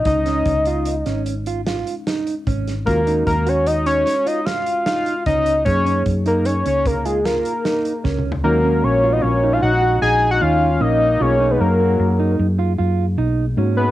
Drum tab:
HH |x--x--x--x--x--x--x--x--x--x--x--x--x--x--|x--x--x--x--x--x--x--x--x--x--x--x--x--x--|x--x--x--x--x--x--x--x--x--x--x--x--------|------------------------------------------|
SD |---o-----------o--------o-----o--------o--|------------------o-----o-----o-----------|------------------------o-----o-----o-----|------------------------------------------|
T2 |------------------------------------------|------------------------------------------|--------------------------------------o---|------------------------------------------|
FT |------------------------------------------|------------------------------------------|----------------------------------------o-|------------------------------------------|
BD |o-----o-----------------------------o-----|o-----o-----------------------------o-----|o-----o-----------o-----------------o-----|------------------------------------------|

HH |------------------------------------------|
SD |------------------------------------------|
T2 |------------------------------------------|
FT |------------------------------------------|
BD |------------------------------------------|